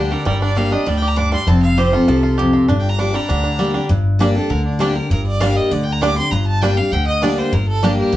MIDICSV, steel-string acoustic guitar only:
0, 0, Header, 1, 2, 480
1, 0, Start_track
1, 0, Key_signature, -2, "minor"
1, 0, Tempo, 302725
1, 420, Time_signature, 4, 2, 24, 8
1, 12948, End_track
2, 0, Start_track
2, 0, Title_t, "Steel-string acoustic guitar"
2, 0, Program_c, 0, 25
2, 0, Note_on_c, 0, 50, 90
2, 0, Note_on_c, 0, 55, 60
2, 0, Note_on_c, 0, 58, 57
2, 0, Note_on_c, 0, 62, 66
2, 163, Note_off_c, 0, 55, 0
2, 166, Note_on_c, 0, 67, 52
2, 171, Note_off_c, 0, 58, 0
2, 177, Note_off_c, 0, 62, 0
2, 199, Note_on_c, 0, 62, 46
2, 370, Note_off_c, 0, 50, 0
2, 400, Note_on_c, 0, 43, 89
2, 401, Note_off_c, 0, 67, 0
2, 417, Note_off_c, 0, 62, 0
2, 876, Note_on_c, 0, 55, 55
2, 890, Note_on_c, 0, 58, 65
2, 907, Note_on_c, 0, 62, 74
2, 912, Note_on_c, 0, 67, 61
2, 1110, Note_off_c, 0, 67, 0
2, 1123, Note_off_c, 0, 55, 0
2, 1129, Note_on_c, 0, 67, 51
2, 1130, Note_off_c, 0, 58, 0
2, 1139, Note_off_c, 0, 62, 0
2, 1163, Note_on_c, 0, 62, 47
2, 1323, Note_off_c, 0, 43, 0
2, 1363, Note_off_c, 0, 67, 0
2, 1368, Note_on_c, 0, 45, 85
2, 1379, Note_off_c, 0, 62, 0
2, 1831, Note_off_c, 0, 45, 0
2, 1843, Note_on_c, 0, 43, 82
2, 2308, Note_off_c, 0, 43, 0
2, 2335, Note_on_c, 0, 41, 91
2, 2806, Note_on_c, 0, 53, 57
2, 2820, Note_on_c, 0, 57, 64
2, 2834, Note_on_c, 0, 60, 69
2, 2842, Note_on_c, 0, 65, 63
2, 3043, Note_off_c, 0, 65, 0
2, 3048, Note_off_c, 0, 53, 0
2, 3055, Note_off_c, 0, 57, 0
2, 3062, Note_off_c, 0, 60, 0
2, 3062, Note_on_c, 0, 65, 49
2, 3093, Note_on_c, 0, 60, 45
2, 3251, Note_off_c, 0, 41, 0
2, 3289, Note_off_c, 0, 65, 0
2, 3303, Note_on_c, 0, 48, 84
2, 3305, Note_off_c, 0, 60, 0
2, 3791, Note_on_c, 0, 41, 91
2, 4214, Note_off_c, 0, 48, 0
2, 4242, Note_off_c, 0, 41, 0
2, 4270, Note_on_c, 0, 43, 94
2, 4740, Note_on_c, 0, 55, 58
2, 4748, Note_on_c, 0, 58, 62
2, 4763, Note_on_c, 0, 62, 57
2, 4768, Note_on_c, 0, 67, 72
2, 4951, Note_off_c, 0, 67, 0
2, 4970, Note_on_c, 0, 67, 53
2, 4975, Note_off_c, 0, 55, 0
2, 4979, Note_off_c, 0, 58, 0
2, 4986, Note_off_c, 0, 62, 0
2, 5012, Note_on_c, 0, 62, 43
2, 5177, Note_off_c, 0, 43, 0
2, 5203, Note_off_c, 0, 67, 0
2, 5224, Note_off_c, 0, 62, 0
2, 5225, Note_on_c, 0, 50, 90
2, 5687, Note_on_c, 0, 55, 65
2, 5698, Note_on_c, 0, 58, 60
2, 5710, Note_on_c, 0, 62, 59
2, 5716, Note_on_c, 0, 67, 69
2, 5915, Note_off_c, 0, 67, 0
2, 5928, Note_off_c, 0, 55, 0
2, 5933, Note_off_c, 0, 58, 0
2, 5934, Note_on_c, 0, 67, 53
2, 5940, Note_off_c, 0, 62, 0
2, 5969, Note_on_c, 0, 62, 41
2, 6135, Note_off_c, 0, 50, 0
2, 6164, Note_off_c, 0, 67, 0
2, 6171, Note_on_c, 0, 43, 93
2, 6182, Note_off_c, 0, 62, 0
2, 6643, Note_on_c, 0, 55, 84
2, 6663, Note_on_c, 0, 58, 95
2, 6670, Note_on_c, 0, 62, 93
2, 6687, Note_on_c, 0, 67, 101
2, 6874, Note_off_c, 0, 67, 0
2, 6886, Note_off_c, 0, 55, 0
2, 6893, Note_on_c, 0, 67, 55
2, 6896, Note_off_c, 0, 58, 0
2, 6900, Note_off_c, 0, 62, 0
2, 6930, Note_on_c, 0, 62, 45
2, 7088, Note_off_c, 0, 43, 0
2, 7124, Note_off_c, 0, 67, 0
2, 7132, Note_on_c, 0, 50, 82
2, 7143, Note_off_c, 0, 62, 0
2, 7593, Note_on_c, 0, 55, 79
2, 7618, Note_on_c, 0, 58, 90
2, 7623, Note_on_c, 0, 62, 93
2, 7635, Note_on_c, 0, 67, 105
2, 7829, Note_off_c, 0, 67, 0
2, 7841, Note_off_c, 0, 55, 0
2, 7848, Note_on_c, 0, 67, 55
2, 7853, Note_off_c, 0, 58, 0
2, 7856, Note_off_c, 0, 62, 0
2, 7884, Note_on_c, 0, 62, 43
2, 8048, Note_off_c, 0, 50, 0
2, 8081, Note_off_c, 0, 67, 0
2, 8100, Note_off_c, 0, 62, 0
2, 8104, Note_on_c, 0, 43, 95
2, 8569, Note_on_c, 0, 55, 92
2, 8590, Note_on_c, 0, 58, 97
2, 8601, Note_on_c, 0, 62, 93
2, 8606, Note_on_c, 0, 67, 100
2, 9014, Note_off_c, 0, 43, 0
2, 9030, Note_off_c, 0, 55, 0
2, 9040, Note_off_c, 0, 58, 0
2, 9046, Note_off_c, 0, 62, 0
2, 9049, Note_off_c, 0, 67, 0
2, 9058, Note_on_c, 0, 50, 86
2, 9530, Note_on_c, 0, 55, 85
2, 9545, Note_on_c, 0, 58, 86
2, 9559, Note_on_c, 0, 62, 97
2, 9566, Note_on_c, 0, 67, 95
2, 9769, Note_off_c, 0, 55, 0
2, 9769, Note_off_c, 0, 67, 0
2, 9777, Note_off_c, 0, 58, 0
2, 9784, Note_off_c, 0, 62, 0
2, 9788, Note_on_c, 0, 67, 52
2, 9830, Note_on_c, 0, 62, 45
2, 9971, Note_off_c, 0, 50, 0
2, 10011, Note_off_c, 0, 67, 0
2, 10028, Note_on_c, 0, 43, 90
2, 10032, Note_off_c, 0, 62, 0
2, 10499, Note_on_c, 0, 55, 86
2, 10513, Note_on_c, 0, 58, 91
2, 10522, Note_on_c, 0, 62, 87
2, 10529, Note_on_c, 0, 67, 98
2, 10714, Note_off_c, 0, 67, 0
2, 10733, Note_on_c, 0, 67, 49
2, 10734, Note_off_c, 0, 55, 0
2, 10741, Note_off_c, 0, 58, 0
2, 10745, Note_off_c, 0, 62, 0
2, 10764, Note_on_c, 0, 62, 40
2, 10937, Note_off_c, 0, 43, 0
2, 10964, Note_off_c, 0, 67, 0
2, 10979, Note_off_c, 0, 62, 0
2, 10987, Note_on_c, 0, 50, 92
2, 11444, Note_on_c, 0, 55, 88
2, 11466, Note_on_c, 0, 58, 98
2, 11474, Note_on_c, 0, 62, 94
2, 11482, Note_on_c, 0, 67, 97
2, 11896, Note_off_c, 0, 50, 0
2, 11908, Note_off_c, 0, 55, 0
2, 11919, Note_off_c, 0, 58, 0
2, 11923, Note_off_c, 0, 62, 0
2, 11927, Note_off_c, 0, 67, 0
2, 11932, Note_on_c, 0, 43, 94
2, 12407, Note_on_c, 0, 55, 82
2, 12425, Note_on_c, 0, 58, 95
2, 12434, Note_on_c, 0, 62, 88
2, 12442, Note_on_c, 0, 67, 98
2, 12849, Note_off_c, 0, 43, 0
2, 12870, Note_off_c, 0, 55, 0
2, 12879, Note_off_c, 0, 58, 0
2, 12882, Note_on_c, 0, 50, 87
2, 12883, Note_off_c, 0, 62, 0
2, 12887, Note_off_c, 0, 67, 0
2, 12948, Note_off_c, 0, 50, 0
2, 12948, End_track
0, 0, End_of_file